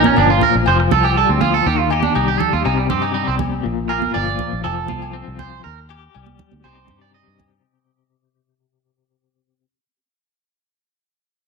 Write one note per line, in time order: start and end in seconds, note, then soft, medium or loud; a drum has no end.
0.00 0.64 A#2 medium
0.00 0.65 A#4 medium
0.04 0.17 C#4 medium
0.04 high conga medium
0.16 0.38 G1 medium
0.16 0.67 F3 medium
0.16 0.29 D4 medium
0.16 low agogo medium
0.30 0.42 F4 medium
0.41 0.54 A#4 medium
0.41 low conga medium
0.55 0.65 A#1 medium
0.66 0.88 F1 medium
0.66 1.17 F3 medium
0.66 0.79 C5 medium
0.66 low agogo medium
0.80 muted clean electric guitar stroke medium
0.91 1.24 C2 medium
0.91 1.64 F4 medium
0.91 1.04 A4 medium
0.91 high conga medium
0.91 low conga medium
1.03 1.16 G4 medium
1.03 low agogo medium
1.17 1.42 G3 medium
1.17 1.29 A4 medium
1.29 1.60 D2 medium
1.29 1.41 C4 soft
1.41 1.67 F3 medium
1.41 1.53 F4 medium
1.41 high conga medium
1.41 low conga medium
1.41 low agogo medium
1.54 1.66 A4 medium
1.66 2.08 D#2 loud
1.66 2.63 D#3 medium
1.66 1.79 G4 medium
1.79 1.91 F4 medium
1.90 2.03 D#4 medium
1.90 2.89 G4 medium
1.90 low agogo medium
2.03 2.15 D4 medium
2.03 high conga medium
2.15 2.37 C2 medium
2.15 2.62 G3 medium
2.15 2.27 D#4 medium
2.15 low agogo medium
2.28 2.40 G4 medium
2.40 2.52 A4 loud
2.40 low conga medium
2.53 2.63 D#2 medium
2.53 2.65 F4 medium
2.65 2.86 C2 loud
2.65 3.64 C3 medium
2.65 2.77 D#4 medium
2.65 low agogo medium
2.78 2.89 G3 medium
2.90 3.22 G2 medium
2.90 3.02 C4 medium
2.90 3.65 G4 medium
2.90 high conga medium
2.90 low conga medium
3.02 3.13 D#4 medium
3.02 low agogo medium
3.14 3.61 G3 medium
3.14 3.26 D#4 medium
3.27 3.59 C2 medium
3.27 3.35 C4 medium
3.39 high conga medium
3.39 low conga medium
3.39 low agogo medium
3.63 4.07 A#1 medium
3.63 4.61 A#2 medium
3.89 4.61 F4 medium
3.89 4.13 A#4 medium
3.89 low agogo medium
4.02 high conga medium
4.14 4.36 G1 medium
4.14 4.63 F3 medium
4.14 4.61 D5 medium
4.14 low agogo medium
4.39 low conga medium
4.53 4.63 A#1 medium
4.64 4.86 F1 medium
4.64 5.64 F3 medium
4.64 5.35 A4 medium
4.64 low agogo medium
4.88 5.21 C2 medium
4.88 5.61 F4 medium
4.88 high conga medium
4.88 low conga medium
5.02 low agogo medium
5.13 5.61 C4 medium
5.28 5.59 C2 medium
5.39 5.63 C5 loud
5.39 high conga medium
5.39 low conga medium
5.39 low agogo medium
5.64 6.07 D#2 medium
5.64 5.79 A#4 medium
5.64 muted clean electric guitar stroke medium
5.89 6.64 G4 medium
5.89 low agogo medium
6.14 6.36 C2 medium
6.14 6.61 G3 medium
6.14 low agogo medium
6.26 high conga medium
6.39 low conga medium
6.52 6.63 D2 medium
6.52 high conga medium
6.64 6.85 C2 medium
6.64 9.65 C3 medium
6.64 7.14 G3 medium
6.64 7.62 C4 soft
6.64 7.62 D#4 medium
6.64 6.89 G4 medium
6.64 6.99 C5 medium
6.64 low agogo medium
6.88 7.21 G2 medium
6.88 9.65 G4 medium
6.88 high conga medium
6.88 low conga medium
7.01 7.13 D5 medium
7.01 low agogo medium
7.14 7.61 G3 medium
7.14 7.49 D#5 medium
7.27 7.59 G2 medium
7.39 high conga medium
7.39 low conga medium
7.39 low agogo medium